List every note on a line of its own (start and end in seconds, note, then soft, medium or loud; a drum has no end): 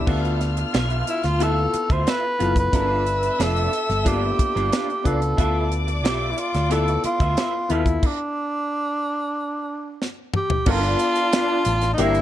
0.07 0.63 D2 medium
0.07 0.91 B3 medium
0.07 0.91 D4 medium
0.07 0.38 F4 medium
0.07 0.91 F4 medium
0.07 2.37 F4 medium
0.07 0.92 A4 medium
0.07 0.38 B4 medium
0.07 0.38 E5 medium
0.07 2.37 F6 medium
0.07 kick medium
0.07 crash medium
0.25 closed hi-hat soft
0.41 snare soft
0.41 closed hi-hat soft
0.57 muted clean electric guitar stroke soft
0.57 closed hi-hat soft
0.73 1.02 B1 medium
0.73 1.04 F4 medium
0.73 1.04 B4 medium
0.73 1.05 E5 medium
0.73 snare medium
0.73 closed hi-hat medium
0.90 closed hi-hat soft
1.07 1.27 E4 medium
1.07 muted clean electric guitar stroke soft
1.07 closed hi-hat medium
1.23 1.65 D2 medium
1.23 1.44 F4 medium
1.23 muted clean electric guitar stroke soft
1.23 snare soft
1.23 closed hi-hat soft
1.39 2.03 B3 medium
1.39 2.03 E4 medium
1.39 1.58 F4 medium
1.39 2.03 F4 medium
1.39 2.03 A4 medium
1.39 1.94 A4 medium
1.39 1.58 B4 medium
1.39 1.58 E5 medium
1.39 closed hi-hat medium
1.73 muted clean electric guitar stroke soft
1.73 muted fingered electric bass stroke soft
1.73 closed hi-hat medium
1.90 2.04 D2 medium
1.90 2.04 F4 soft
1.90 2.04 B4 soft
1.90 2.10 C5 medium
1.90 2.03 E5 soft
1.90 kick medium
1.90 closed hi-hat soft
2.06 2.24 F4 medium
2.06 2.23 B4 medium
2.06 2.57 B4 loud
2.06 2.22 E5 medium
2.06 snare medium
2.06 closed hi-hat medium
2.23 muted clean electric guitar stroke soft
2.39 2.68 F#1 medium
2.39 2.60 B3 medium
2.39 2.61 E4 medium
2.39 2.53 F4 medium
2.39 2.61 F4 medium
2.39 2.61 A4 medium
2.39 2.53 B4 medium
2.39 2.54 F5 medium
2.39 closed hi-hat medium
2.56 3.44 B4 medium
2.56 muted clean electric guitar stroke soft
2.56 kick medium
2.56 closed hi-hat soft
2.73 3.28 G1 medium
2.73 3.57 B3 medium
2.73 2.86 C#4 medium
2.73 3.57 D4 medium
2.73 2.87 E4 medium
2.73 3.57 F4 medium
2.73 3.57 A4 medium
2.73 2.87 A#4 medium
2.73 5.01 E5 medium
2.73 5.01 E6 loud
2.73 kick medium
2.73 closed hi-hat medium
2.86 3.03 D4 medium
2.86 3.04 F4 medium
2.86 3.04 B4 medium
3.06 closed hi-hat medium
3.22 muted clean electric guitar stroke soft
3.22 closed hi-hat soft
3.39 3.67 F1 medium
3.39 3.69 D4 medium
3.39 3.70 F4 medium
3.39 4.09 A4 medium
3.39 3.70 B4 medium
3.39 snare medium
3.39 closed hi-hat medium
3.56 closed hi-hat soft
3.73 muted clean electric guitar stroke soft
3.73 closed hi-hat medium
3.89 4.31 G1 medium
3.89 muted clean electric guitar stroke soft
3.89 snare soft
3.89 closed hi-hat soft
4.05 4.12 A#3 medium
4.05 4.68 D4 medium
4.05 4.23 D4 medium
4.05 4.68 F4 medium
4.05 4.23 F4 medium
4.05 5.08 G4 loud
4.05 4.69 A4 medium
4.05 4.23 B4 medium
4.05 kick medium
4.05 closed hi-hat medium
4.11 4.71 B3 medium
4.38 muted clean electric guitar stroke soft
4.38 muted fingered electric bass stroke soft
4.38 kick medium
4.38 closed hi-hat medium
4.55 4.69 G1 medium
4.55 4.70 D4 soft
4.55 4.69 F4 medium
4.55 4.69 B4 medium
4.55 closed hi-hat soft
4.72 4.89 D4 medium
4.72 4.88 F4 medium
4.72 4.87 B4 medium
4.72 snare medium
4.72 closed hi-hat medium
4.88 muted clean electric guitar stroke soft
4.88 closed hi-hat soft
5.04 5.33 C#2 medium
5.04 5.25 B3 medium
5.04 5.25 D4 medium
5.04 5.18 D4 medium
5.04 5.26 F4 medium
5.04 5.19 F4 medium
5.04 5.78 A4 medium
5.04 5.26 B4 medium
5.04 5.19 D5 medium
5.04 kick medium
5.04 closed hi-hat medium
5.22 closed hi-hat soft
5.37 6.05 D2 medium
5.37 6.22 B3 medium
5.37 5.68 F4 medium
5.37 6.22 F4 medium
5.37 6.22 A4 medium
5.37 5.69 B4 medium
5.37 7.66 D5 medium
5.37 6.22 E5 medium
5.37 5.69 E5 medium
5.37 7.66 D6 loud
5.37 kick medium
5.37 closed hi-hat medium
5.72 closed hi-hat medium
5.87 muted clean electric guitar stroke soft
5.87 closed hi-hat soft
6.04 6.32 B1 medium
6.04 6.35 F4 medium
6.04 6.32 G4 medium
6.04 6.35 B4 medium
6.04 6.35 E5 medium
6.04 snare loud
6.04 closed hi-hat medium
6.31 6.40 E4 medium
6.38 6.73 F4 medium
6.38 muted clean electric guitar stroke soft
6.38 closed hi-hat medium
6.54 6.96 D2 medium
6.54 muted clean electric guitar stroke soft
6.54 snare soft
6.54 closed hi-hat soft
6.69 7.33 B3 medium
6.69 7.33 E4 medium
6.69 7.33 F4 medium
6.69 6.88 F4 medium
6.69 7.33 A4 medium
6.69 7.04 A4 medium
6.69 6.88 B4 medium
6.69 6.89 E5 medium
6.69 closed hi-hat medium
6.88 closed hi-hat soft
7.04 7.73 F4 medium
7.04 muted clean electric guitar stroke soft
7.04 muted fingered electric bass stroke soft
7.04 closed hi-hat medium
7.20 7.34 D2 medium
7.20 7.35 F4 soft
7.20 7.34 B4 soft
7.20 7.34 E5 soft
7.20 kick medium
7.20 closed hi-hat soft
7.37 7.54 F4 medium
7.37 7.53 B4 medium
7.37 7.52 E5 medium
7.37 snare loud
7.37 closed hi-hat medium
7.54 muted clean electric guitar stroke soft
7.69 7.97 D#2 medium
7.69 7.90 B3 medium
7.69 7.91 E4 medium
7.69 8.07 E4 medium
7.69 7.91 F4 medium
7.69 7.84 F4 medium
7.69 7.91 A4 medium
7.69 7.84 B4 medium
7.69 7.84 F5 medium
7.69 closed hi-hat medium
7.86 muted clean electric guitar stroke soft
7.86 kick medium
7.86 closed hi-hat soft
8.03 10.02 D4 medium
8.03 kick medium
8.03 crash medium
10.02 snare medium
10.34 10.72 G4 medium
10.34 mid tom medium
10.50 floor tom medium
10.66 10.94 G1 loud
10.66 11.50 B3 medium
10.66 10.80 C#4 medium
10.66 11.50 D4 medium
10.66 10.79 E4 medium
10.66 11.96 F4 medium
10.66 11.50 F4 medium
10.66 11.51 A4 medium
10.66 10.80 A#4 medium
10.66 11.96 D5 medium
10.66 11.96 A5 medium
10.66 kick loud
10.66 crash medium
10.66 muted triangle soft
10.70 11.93 F4 loud
10.79 10.97 D4 medium
10.79 10.97 F4 medium
10.79 10.98 B4 medium
10.79 muted triangle soft
10.84 closed hi-hat soft
10.99 closed hi-hat medium
10.99 triangle medium
11.15 muted clean electric guitar stroke soft
11.15 closed hi-hat medium
11.15 muted triangle soft
11.32 11.63 D4 medium
11.32 11.63 F4 medium
11.32 11.64 B4 medium
11.32 snare loud
11.32 closed hi-hat medium
11.32 muted triangle soft
11.48 muted triangle medium
11.65 11.93 A1 medium
11.65 muted clean electric guitar stroke soft
11.65 closed hi-hat medium
11.65 triangle medium
11.81 muted clean electric guitar stroke soft
11.81 snare soft
11.81 closed hi-hat soft
11.81 muted triangle soft
11.94 12.22 A#3 medium
11.94 12.02 D#4 medium
11.98 12.22 G1 loud
11.98 12.22 D4 medium
11.98 12.22 E4 medium
11.98 12.16 E4 medium
11.98 12.22 E4 medium
11.98 12.22 G4 medium
11.98 12.16 A#4 medium
11.98 12.22 C5 medium
11.98 12.16 C5 loud
11.98 12.22 G5 medium
11.98 closed hi-hat loud
11.98 muted triangle medium
12.15 closed hi-hat soft
12.15 muted triangle medium